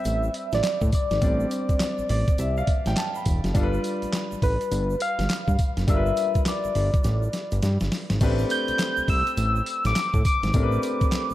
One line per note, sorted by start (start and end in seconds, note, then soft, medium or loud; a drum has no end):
0.00 1.17 G3 medium
0.00 1.18 C4 medium
0.00 1.18 D4 medium
0.00 1.19 B4 medium
0.00 0.56 E5 loud
0.05 0.30 A1 medium
0.05 closed hi-hat medium
0.05 tambourine medium
0.05 shaker medium
0.23 shaker medium
0.34 closed hi-hat medium
0.34 tambourine medium
0.52 0.62 A1 medium
0.52 0.94 D5 medium
0.52 snare medium
0.52 closed hi-hat medium
0.52 shaker medium
0.63 snare loud
0.63 clap medium
0.63 closed hi-hat medium
0.63 tambourine medium
0.63 shaker medium
0.81 0.91 A2 medium
0.81 kick medium
0.81 shaker medium
0.92 3.23 D5 loud
0.92 kick medium
0.92 closed hi-hat medium
0.92 tambourine medium
0.92 shaker soft
1.11 1.20 G#1 medium
1.11 snare medium
1.11 closed hi-hat soft
1.11 shaker soft
1.21 1.46 A1 loud
1.21 3.51 G3 medium
1.21 3.51 C4 medium
1.21 3.51 D4 medium
1.21 2.09 D5 medium
1.21 kick loud
1.21 closed hi-hat medium
1.21 tambourine medium
1.21 shaker medium
1.40 shaker medium
1.51 closed hi-hat medium
1.51 tambourine medium
1.51 shaker medium
1.69 1.74 A1 soft
1.69 kick medium
1.69 closed hi-hat soft
1.69 shaker soft
1.80 snare loud
1.80 clap medium
1.80 closed hi-hat medium
1.80 tambourine medium
1.80 shaker medium
1.98 2.03 A1 soft
1.98 shaker medium
2.09 2.25 A1 medium
2.09 2.37 D5 medium
2.09 open hi-hat medium
2.09 shaker soft
2.28 kick loud
2.28 closed hi-hat medium
2.28 shaker soft
2.38 2.63 C2 loud
2.38 2.56 E5 medium
2.38 closed hi-hat medium
2.38 tambourine medium
2.38 shaker medium
2.57 2.84 F5 medium
2.57 shaker medium
2.67 kick medium
2.67 closed hi-hat medium
2.67 tambourine medium
2.86 2.95 A1 medium
2.86 2.97 G5 medium
2.86 snare medium
2.86 closed hi-hat medium
2.86 shaker medium
2.96 3.14 A5 medium
2.96 snare loud
2.96 clap loud
2.96 closed hi-hat medium
2.96 tambourine medium
2.96 shaker medium
3.15 3.52 B5 medium
3.15 shaker medium
3.25 3.41 E1 medium
3.25 kick medium
3.25 closed hi-hat medium
3.25 tambourine medium
3.25 shaker soft
3.44 3.53 F#1 medium
3.44 snare medium
3.44 closed hi-hat soft
3.44 shaker soft
3.54 3.79 G1 loud
3.54 5.83 G3 medium
3.54 5.84 D4 medium
3.54 5.84 F4 medium
3.54 3.64 A4 medium
3.54 kick loud
3.54 closed hi-hat medium
3.54 tambourine medium
3.54 shaker medium
3.63 5.88 B4 medium
3.74 shaker soft
3.84 closed hi-hat medium
3.84 tambourine medium
3.84 shaker medium
4.02 4.07 A1 soft
4.02 closed hi-hat soft
4.02 shaker soft
4.13 snare loud
4.13 clap loud
4.13 closed hi-hat medium
4.13 tambourine medium
4.13 shaker medium
4.32 4.36 A1 soft
4.32 shaker medium
4.42 4.58 A1 medium
4.42 5.03 B4 loud
4.42 kick medium
4.42 open hi-hat medium
4.42 shaker soft
4.61 closed hi-hat medium
4.61 shaker soft
4.71 4.96 G1 loud
4.71 closed hi-hat medium
4.71 tambourine medium
4.71 shaker medium
4.90 shaker medium
5.00 5.59 F5 loud
5.00 closed hi-hat medium
5.00 tambourine medium
5.19 5.28 G1 medium
5.19 snare medium
5.19 closed hi-hat medium
5.19 shaker medium
5.29 snare loud
5.29 clap loud
5.29 closed hi-hat medium
5.29 tambourine medium
5.29 shaker medium
5.48 5.57 G2 medium
5.48 kick medium
5.48 shaker medium
5.59 kick medium
5.59 closed hi-hat medium
5.59 tambourine medium
5.59 shaker soft
5.77 5.86 F#1 medium
5.77 snare medium
5.77 closed hi-hat medium
5.77 shaker soft
5.87 6.12 G1 loud
5.87 8.17 G3 medium
5.87 8.17 D4 medium
5.87 8.18 F4 medium
5.87 5.97 A#4 medium
5.87 6.43 E5 loud
5.87 kick loud
5.87 closed hi-hat medium
5.87 tambourine medium
5.87 shaker medium
5.96 8.21 B4 medium
6.06 shaker soft
6.17 closed hi-hat medium
6.17 tambourine medium
6.17 shaker medium
6.35 6.40 G1 soft
6.35 kick medium
6.35 closed hi-hat soft
6.35 shaker soft
6.46 7.60 D5 loud
6.46 snare loud
6.46 clap loud
6.46 closed hi-hat medium
6.46 tambourine medium
6.46 shaker medium
6.64 6.69 G1 soft
6.64 shaker medium
6.75 6.91 G1 loud
6.75 open hi-hat medium
6.75 shaker soft
6.94 kick loud
6.94 closed hi-hat medium
6.94 shaker soft
7.04 7.29 A1 loud
7.04 snare medium
7.04 closed hi-hat medium
7.04 shaker medium
7.23 shaker medium
7.33 snare medium
7.33 closed hi-hat medium
7.33 shaker soft
7.52 7.61 G1 medium
7.52 closed hi-hat medium
7.52 shaker soft
7.62 7.78 G2 loud
7.62 snare medium
7.62 closed hi-hat medium
7.62 shaker medium
7.81 7.90 G1 medium
7.81 snare medium
7.81 shaker medium
7.92 snare loud
7.92 open hi-hat medium
7.92 shaker soft
8.10 8.19 G#1 medium
8.10 snare medium
8.10 closed hi-hat soft
8.10 shaker soft
8.21 8.45 A1 loud
8.21 10.50 A3 medium
8.21 10.50 C4 medium
8.21 10.51 D4 medium
8.21 10.51 G4 medium
8.21 10.51 B4 medium
8.21 kick loud
8.21 closed hi-hat medium
8.21 crash loud
8.21 tambourine medium
8.21 shaker medium
8.39 shaker soft
8.50 9.11 G6 loud
8.50 closed hi-hat medium
8.50 tambourine medium
8.50 shaker medium
8.68 8.73 C2 soft
8.68 closed hi-hat medium
8.68 shaker soft
8.79 snare loud
8.79 clap medium
8.79 closed hi-hat medium
8.79 tambourine medium
8.79 shaker medium
8.97 9.02 C2 medium
8.97 shaker medium
9.08 9.23 C2 medium
9.08 9.88 E6 loud
9.08 kick medium
9.08 open hi-hat medium
9.08 shaker soft
9.27 closed hi-hat medium
9.27 shaker soft
9.37 9.62 A1 loud
9.37 closed hi-hat medium
9.37 tambourine medium
9.37 shaker medium
9.56 shaker medium
9.66 closed hi-hat medium
9.66 tambourine medium
9.85 9.94 A1 medium
9.85 10.26 D6 medium
9.85 snare medium
9.85 closed hi-hat medium
9.85 shaker medium
9.95 snare loud
9.95 clap medium
9.95 closed hi-hat medium
9.95 tambourine medium
9.95 shaker medium
10.14 10.23 A2 medium
10.14 kick loud
10.14 shaker medium
10.25 11.34 D6 loud
10.25 kick medium
10.25 closed hi-hat medium
10.25 tambourine medium
10.25 shaker soft
10.43 10.52 G#1 medium
10.43 snare medium
10.43 closed hi-hat medium
10.43 shaker soft
10.53 10.78 A1 loud
10.53 11.34 A3 medium
10.53 11.34 C4 medium
10.53 11.34 D4 medium
10.53 11.34 G4 medium
10.53 10.63 A#4 medium
10.53 kick loud
10.53 closed hi-hat medium
10.53 tambourine medium
10.53 shaker medium
10.63 11.34 B4 medium
10.72 shaker medium
10.83 closed hi-hat medium
10.83 tambourine medium
10.83 shaker soft
11.01 11.06 A1 soft
11.01 kick medium
11.01 closed hi-hat soft
11.01 shaker medium
11.12 snare loud
11.12 clap medium
11.12 closed hi-hat medium
11.12 tambourine medium
11.12 shaker medium
11.30 11.34 A1 medium
11.30 shaker medium